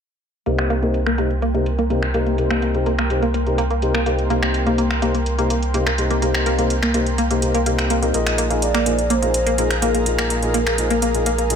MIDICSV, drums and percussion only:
0, 0, Header, 1, 2, 480
1, 0, Start_track
1, 0, Key_signature, -3, "minor"
1, 0, Tempo, 480000
1, 462, Time_signature, 4, 2, 24, 8
1, 11556, End_track
2, 0, Start_track
2, 0, Title_t, "Drums"
2, 462, Note_on_c, 9, 42, 58
2, 562, Note_off_c, 9, 42, 0
2, 585, Note_on_c, 9, 26, 70
2, 585, Note_on_c, 9, 42, 38
2, 685, Note_off_c, 9, 26, 0
2, 685, Note_off_c, 9, 42, 0
2, 702, Note_on_c, 9, 42, 89
2, 802, Note_off_c, 9, 42, 0
2, 825, Note_on_c, 9, 42, 39
2, 925, Note_off_c, 9, 42, 0
2, 942, Note_on_c, 9, 42, 64
2, 1042, Note_off_c, 9, 42, 0
2, 1065, Note_on_c, 9, 26, 60
2, 1065, Note_on_c, 9, 42, 39
2, 1165, Note_off_c, 9, 26, 0
2, 1165, Note_off_c, 9, 42, 0
2, 1182, Note_on_c, 9, 42, 86
2, 1282, Note_off_c, 9, 42, 0
2, 1305, Note_on_c, 9, 42, 37
2, 1405, Note_off_c, 9, 42, 0
2, 1422, Note_on_c, 9, 42, 63
2, 1522, Note_off_c, 9, 42, 0
2, 1545, Note_on_c, 9, 42, 40
2, 1645, Note_off_c, 9, 42, 0
2, 1662, Note_on_c, 9, 42, 86
2, 1762, Note_off_c, 9, 42, 0
2, 1786, Note_on_c, 9, 42, 37
2, 1886, Note_off_c, 9, 42, 0
2, 1902, Note_on_c, 9, 42, 61
2, 2002, Note_off_c, 9, 42, 0
2, 2025, Note_on_c, 9, 26, 56
2, 2025, Note_on_c, 9, 42, 37
2, 2125, Note_off_c, 9, 26, 0
2, 2125, Note_off_c, 9, 42, 0
2, 2142, Note_on_c, 9, 42, 85
2, 2242, Note_off_c, 9, 42, 0
2, 2265, Note_on_c, 9, 42, 40
2, 2365, Note_off_c, 9, 42, 0
2, 2382, Note_on_c, 9, 42, 61
2, 2482, Note_off_c, 9, 42, 0
2, 2505, Note_on_c, 9, 26, 75
2, 2505, Note_on_c, 9, 42, 36
2, 2605, Note_off_c, 9, 26, 0
2, 2605, Note_off_c, 9, 42, 0
2, 2622, Note_on_c, 9, 42, 86
2, 2722, Note_off_c, 9, 42, 0
2, 2745, Note_on_c, 9, 42, 37
2, 2845, Note_off_c, 9, 42, 0
2, 2862, Note_on_c, 9, 42, 59
2, 2962, Note_off_c, 9, 42, 0
2, 2985, Note_on_c, 9, 26, 58
2, 2985, Note_on_c, 9, 42, 38
2, 3085, Note_off_c, 9, 26, 0
2, 3085, Note_off_c, 9, 42, 0
2, 3102, Note_on_c, 9, 42, 83
2, 3202, Note_off_c, 9, 42, 0
2, 3225, Note_on_c, 9, 42, 37
2, 3325, Note_off_c, 9, 42, 0
2, 3342, Note_on_c, 9, 42, 64
2, 3442, Note_off_c, 9, 42, 0
2, 3465, Note_on_c, 9, 42, 38
2, 3565, Note_off_c, 9, 42, 0
2, 3582, Note_on_c, 9, 42, 81
2, 3682, Note_off_c, 9, 42, 0
2, 3705, Note_on_c, 9, 42, 35
2, 3805, Note_off_c, 9, 42, 0
2, 3822, Note_on_c, 9, 42, 63
2, 3922, Note_off_c, 9, 42, 0
2, 3945, Note_on_c, 9, 26, 59
2, 3945, Note_on_c, 9, 42, 36
2, 4045, Note_off_c, 9, 26, 0
2, 4045, Note_off_c, 9, 42, 0
2, 4062, Note_on_c, 9, 42, 83
2, 4162, Note_off_c, 9, 42, 0
2, 4185, Note_on_c, 9, 42, 40
2, 4285, Note_off_c, 9, 42, 0
2, 4302, Note_on_c, 9, 42, 57
2, 4402, Note_off_c, 9, 42, 0
2, 4425, Note_on_c, 9, 26, 73
2, 4425, Note_on_c, 9, 42, 36
2, 4525, Note_off_c, 9, 26, 0
2, 4525, Note_off_c, 9, 42, 0
2, 4542, Note_on_c, 9, 42, 86
2, 4642, Note_off_c, 9, 42, 0
2, 4665, Note_on_c, 9, 42, 36
2, 4765, Note_off_c, 9, 42, 0
2, 4782, Note_on_c, 9, 42, 57
2, 4882, Note_off_c, 9, 42, 0
2, 4905, Note_on_c, 9, 26, 64
2, 4905, Note_on_c, 9, 42, 38
2, 5005, Note_off_c, 9, 26, 0
2, 5005, Note_off_c, 9, 42, 0
2, 5022, Note_on_c, 9, 42, 81
2, 5122, Note_off_c, 9, 42, 0
2, 5145, Note_on_c, 9, 42, 37
2, 5245, Note_off_c, 9, 42, 0
2, 5262, Note_on_c, 9, 42, 61
2, 5362, Note_off_c, 9, 42, 0
2, 5386, Note_on_c, 9, 42, 38
2, 5486, Note_off_c, 9, 42, 0
2, 5502, Note_on_c, 9, 42, 81
2, 5602, Note_off_c, 9, 42, 0
2, 5625, Note_on_c, 9, 42, 35
2, 5725, Note_off_c, 9, 42, 0
2, 5742, Note_on_c, 9, 42, 62
2, 5842, Note_off_c, 9, 42, 0
2, 5865, Note_on_c, 9, 26, 63
2, 5865, Note_on_c, 9, 42, 36
2, 5965, Note_off_c, 9, 26, 0
2, 5965, Note_off_c, 9, 42, 0
2, 5983, Note_on_c, 9, 42, 78
2, 6083, Note_off_c, 9, 42, 0
2, 6105, Note_on_c, 9, 42, 37
2, 6205, Note_off_c, 9, 42, 0
2, 6222, Note_on_c, 9, 42, 56
2, 6322, Note_off_c, 9, 42, 0
2, 6345, Note_on_c, 9, 26, 76
2, 6345, Note_on_c, 9, 42, 35
2, 6445, Note_off_c, 9, 26, 0
2, 6445, Note_off_c, 9, 42, 0
2, 6462, Note_on_c, 9, 42, 81
2, 6562, Note_off_c, 9, 42, 0
2, 6586, Note_on_c, 9, 42, 35
2, 6686, Note_off_c, 9, 42, 0
2, 6702, Note_on_c, 9, 42, 58
2, 6802, Note_off_c, 9, 42, 0
2, 6825, Note_on_c, 9, 26, 62
2, 6825, Note_on_c, 9, 42, 35
2, 6925, Note_off_c, 9, 26, 0
2, 6925, Note_off_c, 9, 42, 0
2, 6942, Note_on_c, 9, 42, 85
2, 7042, Note_off_c, 9, 42, 0
2, 7065, Note_on_c, 9, 42, 35
2, 7165, Note_off_c, 9, 42, 0
2, 7182, Note_on_c, 9, 42, 62
2, 7282, Note_off_c, 9, 42, 0
2, 7306, Note_on_c, 9, 42, 37
2, 7406, Note_off_c, 9, 42, 0
2, 7422, Note_on_c, 9, 42, 83
2, 7522, Note_off_c, 9, 42, 0
2, 7545, Note_on_c, 9, 42, 33
2, 7645, Note_off_c, 9, 42, 0
2, 7662, Note_on_c, 9, 42, 60
2, 7762, Note_off_c, 9, 42, 0
2, 7785, Note_on_c, 9, 26, 65
2, 7785, Note_on_c, 9, 42, 36
2, 7885, Note_off_c, 9, 26, 0
2, 7885, Note_off_c, 9, 42, 0
2, 7902, Note_on_c, 9, 42, 79
2, 8002, Note_off_c, 9, 42, 0
2, 8026, Note_on_c, 9, 42, 37
2, 8125, Note_off_c, 9, 42, 0
2, 8142, Note_on_c, 9, 42, 58
2, 8242, Note_off_c, 9, 42, 0
2, 8265, Note_on_c, 9, 26, 75
2, 8265, Note_on_c, 9, 42, 36
2, 8365, Note_off_c, 9, 26, 0
2, 8365, Note_off_c, 9, 42, 0
2, 8382, Note_on_c, 9, 42, 81
2, 8482, Note_off_c, 9, 42, 0
2, 8505, Note_on_c, 9, 42, 35
2, 8605, Note_off_c, 9, 42, 0
2, 8622, Note_on_c, 9, 42, 58
2, 8722, Note_off_c, 9, 42, 0
2, 8745, Note_on_c, 9, 26, 66
2, 8745, Note_on_c, 9, 42, 36
2, 8845, Note_off_c, 9, 26, 0
2, 8845, Note_off_c, 9, 42, 0
2, 8862, Note_on_c, 9, 42, 81
2, 8962, Note_off_c, 9, 42, 0
2, 8985, Note_on_c, 9, 42, 34
2, 9085, Note_off_c, 9, 42, 0
2, 9102, Note_on_c, 9, 42, 58
2, 9202, Note_off_c, 9, 42, 0
2, 9225, Note_on_c, 9, 42, 35
2, 9325, Note_off_c, 9, 42, 0
2, 9342, Note_on_c, 9, 42, 76
2, 9442, Note_off_c, 9, 42, 0
2, 9466, Note_on_c, 9, 42, 36
2, 9566, Note_off_c, 9, 42, 0
2, 9582, Note_on_c, 9, 42, 61
2, 9682, Note_off_c, 9, 42, 0
2, 9705, Note_on_c, 9, 26, 62
2, 9705, Note_on_c, 9, 42, 36
2, 9805, Note_off_c, 9, 26, 0
2, 9805, Note_off_c, 9, 42, 0
2, 9822, Note_on_c, 9, 42, 77
2, 9922, Note_off_c, 9, 42, 0
2, 9945, Note_on_c, 9, 42, 37
2, 10045, Note_off_c, 9, 42, 0
2, 10062, Note_on_c, 9, 42, 58
2, 10162, Note_off_c, 9, 42, 0
2, 10185, Note_on_c, 9, 26, 77
2, 10185, Note_on_c, 9, 42, 36
2, 10285, Note_off_c, 9, 26, 0
2, 10285, Note_off_c, 9, 42, 0
2, 10302, Note_on_c, 9, 42, 88
2, 10402, Note_off_c, 9, 42, 0
2, 10425, Note_on_c, 9, 42, 37
2, 10525, Note_off_c, 9, 42, 0
2, 10542, Note_on_c, 9, 42, 57
2, 10642, Note_off_c, 9, 42, 0
2, 10665, Note_on_c, 9, 26, 63
2, 10665, Note_on_c, 9, 42, 35
2, 10765, Note_off_c, 9, 26, 0
2, 10765, Note_off_c, 9, 42, 0
2, 10782, Note_on_c, 9, 42, 86
2, 10882, Note_off_c, 9, 42, 0
2, 10905, Note_on_c, 9, 42, 34
2, 11005, Note_off_c, 9, 42, 0
2, 11022, Note_on_c, 9, 42, 63
2, 11122, Note_off_c, 9, 42, 0
2, 11145, Note_on_c, 9, 42, 37
2, 11245, Note_off_c, 9, 42, 0
2, 11262, Note_on_c, 9, 42, 86
2, 11362, Note_off_c, 9, 42, 0
2, 11385, Note_on_c, 9, 42, 38
2, 11485, Note_off_c, 9, 42, 0
2, 11501, Note_on_c, 9, 42, 63
2, 11556, Note_off_c, 9, 42, 0
2, 11556, End_track
0, 0, End_of_file